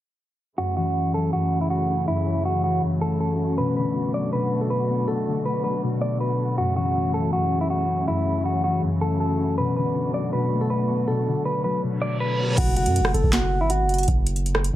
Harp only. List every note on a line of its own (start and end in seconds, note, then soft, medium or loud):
0.58 1.32 F#2 medium
0.76 2.25 E3 medium
1.14 2.63 F#3 medium
1.34 2.06 F#2 medium
1.52 3.01 A3 medium
1.89 3.38 C#4 medium
2.08 2.82 F#2 medium
2.26 3.63 E3 medium
2.64 3.63 F#3 medium
2.83 3.63 F#2 medium
3.02 4.52 A3 medium
3.39 3.82 C#4 medium
3.58 3.82 B2 medium
3.76 4.38 D3 medium
4.14 5.32 F#3 medium
4.33 5.06 B2 medium
4.52 6.02 A3 medium
4.89 6.39 B3 medium
5.08 5.32 B2 medium
5.27 5.88 D3 medium
5.64 6.63 F#3 medium
5.83 6.63 B2 medium
6.02 7.51 A3 medium
6.39 9.50 B3 medium
6.58 7.32 F#2 medium
6.76 8.25 E3 medium
7.14 8.63 F#3 medium
7.34 8.06 F#2 medium
7.52 9.01 A3 medium
7.89 9.38 C#4 medium
8.08 8.82 F#2 loud
8.26 9.63 E3 medium
8.64 9.63 F#3 medium
8.83 9.63 F#2 medium
9.02 10.52 A3 medium
9.39 9.82 C#4 medium
9.58 9.82 B2 loud
9.76 10.38 D3 medium
10.15 11.32 F#3 medium
10.33 11.06 B2 medium
10.52 12.02 A3 medium
10.89 12.39 B3 medium
11.08 11.32 B2 medium
11.27 11.88 D3 medium
11.64 12.63 F#3 medium
11.83 12.63 B2 medium
12.02 14.76 A3 medium
12.39 14.76 B3 medium